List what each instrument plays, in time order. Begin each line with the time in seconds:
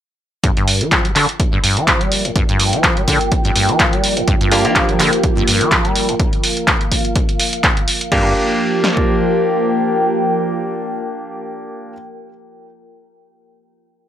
0.44 acid bass G2, ambient pad F4, kick, closed hi-hat
0.57 acid bass G2, closed hi-hat
0.68 open hi-hat
0.81 acid bass F3, ambient pad A#4, closed hi-hat
0.92 kick, clap, closed hi-hat
1.05 acid bass G3, closed hi-hat
1.16 acid bass D3, clap, open hi-hat
1.29 closed hi-hat
1.40 kick, closed hi-hat
1.53 acid bass G2
1.64 acid bass G2, open hi-hat
1.74 acid bass F3, ambient pad G5, closed hi-hat
1.88 kick, clap, closed hi-hat
2.01 acid bass G3, closed hi-hat
2.12 open hi-hat
2.25 acid bass G2, closed hi-hat
2.36 acid bass G2, kick, closed hi-hat
2.49 acid bass G2, closed hi-hat
2.60 open hi-hat
2.73 acid bass F3, closed hi-hat
2.84 kick, clap, closed hi-hat
2.97 acid bass G3, closed hi-hat
3.08 acid bass D3, kick, open hi-hat
3.21 closed hi-hat
3.32 kick, closed hi-hat
3.45 acid bass G2, closed hi-hat
3.55 acid bass G2, open hi-hat
3.69 acid bass F3, closed hi-hat
3.80 kick, clap, closed hi-hat
3.93 acid bass G3, closed hi-hat
4.04 open hi-hat
4.17 acid bass G2, closed hi-hat
4.28 acid bass G2, analog synth pad F3 A#3 G4, kick, closed hi-hat
4.41 acid bass G2, closed hi-hat
4.52 grand piano A#3 D4 F4 G4, open hi-hat
4.65 acid bass F3, grand piano A#3 D4 F4 G4, closed hi-hat
4.76 kick, clap, closed hi-hat
4.89 acid bass G3, closed hi-hat
5.00 acid bass D3, clap, open hi-hat
5.13 closed hi-hat
5.23 kick, closed hi-hat
5.37 acid bass G2
5.48 acid bass G2, open hi-hat
5.58 acid bass F3, ambient pad F5, closed hi-hat
5.72 kick, clap, closed hi-hat
5.85 acid bass G3, closed hi-hat
5.96 open hi-hat
6.09 acid bass G2, closed hi-hat
6.20 kick, closed hi-hat
6.33 closed hi-hat
6.44 open hi-hat
6.57 closed hi-hat
6.68 kick, clap, closed hi-hat
6.81 closed hi-hat
6.92 kick, open hi-hat
7.05 closed hi-hat
7.16 kick, closed hi-hat
7.29 closed hi-hat
7.40 open hi-hat
7.53 closed hi-hat
7.64 kick, clap, closed hi-hat
7.77 closed hi-hat
7.88 open hi-hat
8.01 closed hi-hat
8.12 acid bass G2, analog synth pad F3 A#3 G4, grand piano A#3 D4 F4 G4, ambient pad F4, kick, crash
8.20 ambient pad A#4
8.27 ambient pad G5
8.84 snare
8.97 kick